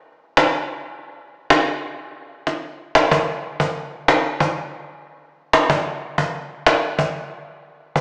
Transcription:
0.37 cajon slap
1.50 cajon slap
2.47 cajon slap
2.95 cajon slap
3.11 cajon bass
3.60 cajon bass
4.08 cajon slap
4.40 cajon bass
5.53 cajon slap
5.70 cajon bass
6.18 cajon bass
6.67 cajon slap
6.99 cajon bass
7.96 cajon bass

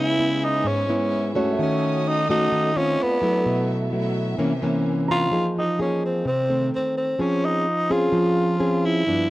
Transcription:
Already playing: C#3 G#3 B3 C#4 E4 G#4 B4 E5
0.19 G#3 B3 E4
0.44 D#4
0.64 G#2 C#4
0.89 G#3 B3 E4
1.35 A3 C#4 F#4 C#5
1.53 E5
1.58 D#3 F#4 A4 D#6
1.62 C#4
2.08 D#4
2.30 A3 C#4 D#4 F#4
2.52 D#3
2.76 A3 C4 C#4 F4
2.98 D4 A4 D5
3.02 B3
3.21 F#3 A3 E4
3.44 B2 B3 F#4 E5
3.92 F#3 A3 E4
4.37 C3 E3 A#3 C#4 A#4 C5
4.62 E3 A#3 C#4
5.08 F4 A#5
5.31 F3 A#3 D#4 G#4
5.59 D#4
5.79 A#3 C#4 D#4 G#4
6.05 C4
6.25 C3 C4
6.49 D#3 A3 C4
6.75 C4
6.98 C4
7.19 F3 C4 C#4 G#4
7.45 D#4
7.90 C4 C#4 F4 G#4
8.12 F3
8.60 C4 C#4 G#4
8.85 E4
9.06 G2 F3 B3 D4

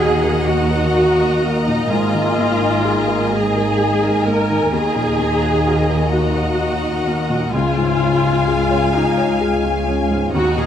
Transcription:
Already playing: D#2 A#2 D#3 A#3 D#4 F#4 G#4 D#5 F#5 A#5
0.00 F#4 A#4
0.23 A#4 D#5
0.47 F#4 F#5
0.71 A#4 A#5
0.95 F#4 F#5
1.20 D#4 D#5
1.42 A#3 A#4
1.66 A#2 D#4 F#4
1.90 G#1 G#2 D#4 F4 G#5
2.13 D#3
2.37 A#3
2.61 D#4
2.84 G#4
3.08 A#4
3.32 G#4 D#5
3.55 A#4 G#5
3.79 G#4 D#5
4.03 D#4 A#4
4.26 A#3 G#4 A#4
4.50 D#3 D#4
4.72 D#2 D#3 A#3 G#4 D#5 A#5
4.96 A#2 A#3
5.19 A#3 D#4
5.42 D#4 F#4
5.66 F#4 A#4
5.89 A#4 D#5
6.12 F#4 F#5
6.35 A#4 A#5
6.60 F#4 F#5
6.83 D#4 D#5
7.07 A#3 A#4
7.30 A#2 F#4
7.53 C#2 C#3 G#3 F4 F5 G#5
7.77 G#2 G#3
8.00 C#4
8.23 F4
8.47 G#4
8.71 C#5
8.94 D#4 G#4 F5
9.17 C#5 G#5
9.40 G#4 F5
9.63 F4 C#5
9.87 C#4 G#4
10.11 G#2 F4
10.33 D#2 A#2 D#3 F#4 D#5 F#5 A#5
10.57 A#2 A#3 G#4

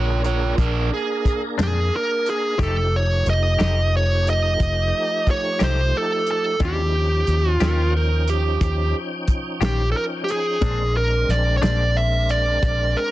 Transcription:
Already playing: A#1 A#3 D4 F4 G#4 A#4 C#5
0.24 F4 C#5, closed hi-hat
0.58 A#1 D4 A#4, kick, closed hi-hat
0.94 G#4
1.25 kick, closed hi-hat
1.58 F2 A#2 G#3 C4 D4, snare, closed hi-hat
1.63 G#4
1.96 A#4
2.26 G#4, closed hi-hat
2.58 F1 F3 A3 D#4 G4, kick, closed hi-hat
2.63 A4
2.96 C#5
3.26 F1 D#5, snare, closed hi-hat
3.59 F1 F3 A3 D#4 G4, snare, closed hi-hat
3.97 C#5
4.27 D#5, closed hi-hat
4.60 F1, kick, closed hi-hat
5.27 C#5, kick, closed hi-hat
5.59 C2 F3 A3 D#4 G4, snare, closed hi-hat
5.64 C5
5.97 A4
6.27 closed hi-hat
6.31 A4
6.60 D#2 D#3 F3 G#3 C#4 D4 E4 F4 G4, kick, closed hi-hat
6.65 G4
6.95 F3 C#4 D#4 G5
7.27 D#2, closed hi-hat
7.52 F4
7.60 D#2 D#3 C#4 F4 G4 A#4, snare, closed hi-hat
7.97 A#4
8.28 G4, closed hi-hat
8.61 D#2 G4, kick, closed hi-hat
9.28 kick, closed hi-hat
9.61 A#1 D#3 C#4 F4 G4, snare, closed hi-hat
9.65 G4
9.92 A4
9.97 A#4
10.24 G4
10.29 G#4, closed hi-hat
10.61 A#1 A#2 G#3 C4 D4 A#4, kick, closed hi-hat
10.97 A#4
11.29 A#1 D5, snare, closed hi-hat
11.57 C#5
11.62 A#1 A#2 G#3 C4 D4 D5, snare, closed hi-hat
11.97 E5
12.29 D5, closed hi-hat
12.63 A#1, kick, closed hi-hat
12.97 A#4

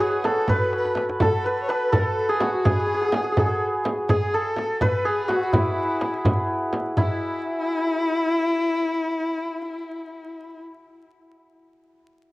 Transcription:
Already playing: E4 F#4 B4 C#5
0.00 G#4
0.13 tombak ka
0.24 A4, tombak tek, frame drum
0.48 B4, frame drum, tombak dum
0.73 tombak tek
0.78 B4
0.85 tombak ka
0.95 tombak tek, frame drum
1.09 tombak ka
1.20 A4, frame drum, tombak dum
1.44 B4
1.62 C#5
1.68 B4, tombak tek
1.92 A4, frame drum, tombak dum
2.29 G#4
2.39 F#4, tombak tek, frame drum
2.54 tombak ka
2.65 G#4, frame drum, tombak dum
2.72 G#4
2.79 G#4
2.86 G#4
2.94 G#4
3.01 G#4
3.08 G#4, frame drum
3.14 G#4, tombak tek
3.24 G#4
3.32 G#4
3.37 G#4 A4, frame drum, tombak dum
3.46 G#4
3.85 tombak tek, frame drum
3.98 tombak ka
4.09 G#4, frame drum, tombak dum
4.33 A4
4.56 tombak tek, frame drum
4.81 B4, frame drum, tombak dum
5.05 G#4
5.28 F#4, tombak tek, frame drum
5.42 tombak ka
5.53 E4, tombak dum, frame drum
6.01 tombak tek, frame drum
6.25 tombak dum, frame drum
6.50 tombak ka
6.73 tombak tek, frame drum
6.97 E4, frame drum, tombak dum

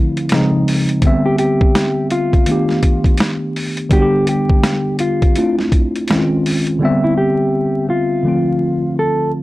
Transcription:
Already playing: D3 F3 A3 C4 E4
0.17 closed hi-hat
0.29 C#3 F3 G#3, snare, closed hi-hat
0.34 C4 D#4
0.68 open hi-hat
0.89 closed hi-hat
1.01 D3 G3 B3 C4, kick, closed hi-hat
1.07 E5
1.26 G4
1.38 G4, closed hi-hat
1.61 kick
1.75 snare, closed hi-hat
2.10 F4, closed hi-hat
2.33 kick, closed hi-hat
2.46 D#3 A3 B3, closed hi-hat
2.50 D4 G4
2.69 snare
2.83 kick, closed hi-hat
3.04 kick, closed hi-hat
3.17 snare, closed hi-hat
3.56 open hi-hat
3.77 closed hi-hat
3.89 D3 G3 B3 G4, kick, closed hi-hat
3.94 D4 F#4
4.02 G4
4.27 G4, closed hi-hat
4.50 kick
4.64 snare, closed hi-hat
4.99 F4, closed hi-hat
5.22 kick, closed hi-hat
5.35 A3 C4 D4 E4 F4, closed hi-hat
5.59 snare
5.72 kick, closed hi-hat
5.96 closed hi-hat
6.08 D#3 G#3 C4, snare, closed hi-hat
6.12 C#4 E4
6.19 F4
6.46 open hi-hat
6.67 closed hi-hat
6.79 D3 G3 B3
6.83 C4 E5
7.04 E4
7.17 G4
7.90 F4
8.23 D3 F3 A3
8.27 C4 F4
8.99 A4

